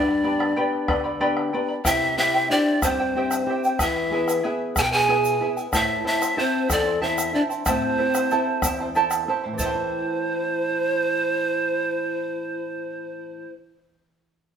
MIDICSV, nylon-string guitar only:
0, 0, Header, 1, 2, 480
1, 0, Start_track
1, 0, Key_signature, 0, "minor"
1, 0, Tempo, 645161
1, 1376, Time_signature, 6, 3, 24, 8
1, 10834, End_track
2, 0, Start_track
2, 0, Title_t, "Nylon-string guitar"
2, 0, Program_c, 0, 24
2, 0, Note_on_c, 0, 43, 74
2, 176, Note_on_c, 0, 59, 54
2, 179, Note_on_c, 0, 62, 53
2, 186, Note_on_c, 0, 67, 56
2, 405, Note_off_c, 0, 43, 0
2, 416, Note_off_c, 0, 59, 0
2, 416, Note_off_c, 0, 62, 0
2, 420, Note_off_c, 0, 67, 0
2, 423, Note_on_c, 0, 59, 53
2, 428, Note_on_c, 0, 62, 45
2, 429, Note_on_c, 0, 67, 58
2, 662, Note_on_c, 0, 50, 82
2, 805, Note_off_c, 0, 59, 0
2, 806, Note_off_c, 0, 62, 0
2, 808, Note_off_c, 0, 67, 0
2, 894, Note_on_c, 0, 59, 53
2, 899, Note_on_c, 0, 62, 49
2, 902, Note_on_c, 0, 67, 54
2, 1125, Note_off_c, 0, 50, 0
2, 1135, Note_off_c, 0, 59, 0
2, 1137, Note_off_c, 0, 62, 0
2, 1141, Note_off_c, 0, 67, 0
2, 1144, Note_on_c, 0, 59, 50
2, 1147, Note_on_c, 0, 62, 42
2, 1150, Note_on_c, 0, 67, 58
2, 1333, Note_off_c, 0, 59, 0
2, 1334, Note_off_c, 0, 62, 0
2, 1337, Note_off_c, 0, 67, 0
2, 1380, Note_on_c, 0, 48, 75
2, 1618, Note_on_c, 0, 60, 55
2, 1621, Note_on_c, 0, 64, 51
2, 1625, Note_on_c, 0, 67, 58
2, 1845, Note_off_c, 0, 48, 0
2, 1845, Note_off_c, 0, 60, 0
2, 1851, Note_off_c, 0, 67, 0
2, 1854, Note_on_c, 0, 60, 49
2, 1855, Note_off_c, 0, 64, 0
2, 1860, Note_on_c, 0, 67, 62
2, 1864, Note_on_c, 0, 64, 46
2, 2097, Note_on_c, 0, 43, 73
2, 2240, Note_off_c, 0, 60, 0
2, 2243, Note_off_c, 0, 67, 0
2, 2246, Note_off_c, 0, 64, 0
2, 2345, Note_on_c, 0, 60, 54
2, 2351, Note_on_c, 0, 64, 46
2, 2355, Note_on_c, 0, 67, 61
2, 2564, Note_off_c, 0, 43, 0
2, 2566, Note_off_c, 0, 60, 0
2, 2569, Note_off_c, 0, 64, 0
2, 2570, Note_off_c, 0, 67, 0
2, 2574, Note_on_c, 0, 60, 53
2, 2579, Note_on_c, 0, 64, 49
2, 2579, Note_on_c, 0, 67, 62
2, 2769, Note_off_c, 0, 60, 0
2, 2770, Note_off_c, 0, 64, 0
2, 2771, Note_off_c, 0, 67, 0
2, 2822, Note_on_c, 0, 52, 71
2, 3055, Note_on_c, 0, 59, 56
2, 3059, Note_on_c, 0, 64, 51
2, 3063, Note_on_c, 0, 68, 65
2, 3287, Note_off_c, 0, 52, 0
2, 3295, Note_off_c, 0, 59, 0
2, 3300, Note_off_c, 0, 64, 0
2, 3303, Note_off_c, 0, 68, 0
2, 3304, Note_on_c, 0, 59, 52
2, 3308, Note_on_c, 0, 64, 48
2, 3314, Note_on_c, 0, 68, 62
2, 3552, Note_on_c, 0, 47, 77
2, 3687, Note_off_c, 0, 59, 0
2, 3690, Note_off_c, 0, 64, 0
2, 3692, Note_off_c, 0, 68, 0
2, 3780, Note_on_c, 0, 64, 50
2, 3784, Note_on_c, 0, 59, 56
2, 3788, Note_on_c, 0, 68, 61
2, 4005, Note_off_c, 0, 59, 0
2, 4012, Note_off_c, 0, 47, 0
2, 4012, Note_off_c, 0, 64, 0
2, 4014, Note_on_c, 0, 59, 50
2, 4015, Note_off_c, 0, 68, 0
2, 4019, Note_on_c, 0, 64, 48
2, 4026, Note_on_c, 0, 68, 64
2, 4209, Note_off_c, 0, 59, 0
2, 4213, Note_off_c, 0, 64, 0
2, 4215, Note_off_c, 0, 68, 0
2, 4256, Note_on_c, 0, 45, 70
2, 4496, Note_on_c, 0, 60, 55
2, 4498, Note_on_c, 0, 64, 53
2, 4499, Note_on_c, 0, 69, 62
2, 4724, Note_off_c, 0, 45, 0
2, 4728, Note_off_c, 0, 64, 0
2, 4731, Note_off_c, 0, 60, 0
2, 4738, Note_off_c, 0, 69, 0
2, 4738, Note_on_c, 0, 64, 50
2, 4739, Note_on_c, 0, 60, 54
2, 4746, Note_on_c, 0, 69, 59
2, 4981, Note_on_c, 0, 40, 77
2, 5123, Note_off_c, 0, 64, 0
2, 5125, Note_off_c, 0, 60, 0
2, 5129, Note_off_c, 0, 69, 0
2, 5223, Note_on_c, 0, 60, 50
2, 5230, Note_on_c, 0, 64, 50
2, 5236, Note_on_c, 0, 69, 65
2, 5447, Note_off_c, 0, 40, 0
2, 5457, Note_off_c, 0, 60, 0
2, 5460, Note_off_c, 0, 64, 0
2, 5463, Note_off_c, 0, 69, 0
2, 5466, Note_on_c, 0, 60, 50
2, 5470, Note_on_c, 0, 64, 44
2, 5472, Note_on_c, 0, 69, 55
2, 5656, Note_off_c, 0, 60, 0
2, 5658, Note_off_c, 0, 64, 0
2, 5660, Note_off_c, 0, 69, 0
2, 5705, Note_on_c, 0, 45, 71
2, 5946, Note_on_c, 0, 60, 52
2, 5949, Note_on_c, 0, 64, 51
2, 5953, Note_on_c, 0, 69, 63
2, 6169, Note_off_c, 0, 45, 0
2, 6176, Note_off_c, 0, 60, 0
2, 6180, Note_off_c, 0, 64, 0
2, 6183, Note_off_c, 0, 69, 0
2, 6185, Note_on_c, 0, 60, 53
2, 6189, Note_on_c, 0, 64, 50
2, 6192, Note_on_c, 0, 69, 62
2, 6431, Note_on_c, 0, 40, 75
2, 6568, Note_off_c, 0, 60, 0
2, 6570, Note_off_c, 0, 64, 0
2, 6572, Note_off_c, 0, 69, 0
2, 6663, Note_on_c, 0, 60, 52
2, 6668, Note_on_c, 0, 64, 47
2, 6671, Note_on_c, 0, 69, 53
2, 6891, Note_off_c, 0, 60, 0
2, 6892, Note_off_c, 0, 40, 0
2, 6894, Note_off_c, 0, 64, 0
2, 6897, Note_off_c, 0, 69, 0
2, 6898, Note_on_c, 0, 60, 49
2, 6905, Note_on_c, 0, 64, 45
2, 6905, Note_on_c, 0, 69, 60
2, 7035, Note_on_c, 0, 45, 55
2, 7090, Note_on_c, 0, 52, 57
2, 7092, Note_off_c, 0, 60, 0
2, 7094, Note_off_c, 0, 64, 0
2, 7096, Note_off_c, 0, 69, 0
2, 7142, Note_on_c, 0, 57, 54
2, 7200, Note_on_c, 0, 60, 53
2, 7252, Note_on_c, 0, 64, 66
2, 9959, Note_off_c, 0, 45, 0
2, 10014, Note_off_c, 0, 52, 0
2, 10066, Note_off_c, 0, 57, 0
2, 10124, Note_off_c, 0, 60, 0
2, 10176, Note_off_c, 0, 64, 0
2, 10834, End_track
0, 0, End_of_file